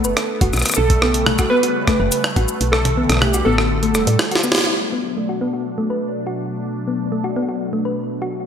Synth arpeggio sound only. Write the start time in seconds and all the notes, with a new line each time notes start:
0.05 B4
0.41 F#4
1.02 B3
1.27 A3
1.39 F#4
1.51 B3
1.63 F#4
1.88 A3
2.00 B4
2.36 F#4
2.97 B3
3.22 A3
3.34 F#4
3.46 B3
3.58 F#4
3.83 A3
3.95 A3
4.32 F#4
4.44 B3
4.93 B3
5.17 A3
5.29 F#4
5.41 B3
5.53 F#4
5.78 A3
5.90 B4
6.27 F#4
6.88 B3
7.12 A3
7.24 F#4
7.36 B3
7.49 F#4
7.73 A3
7.85 B4
8.22 F#4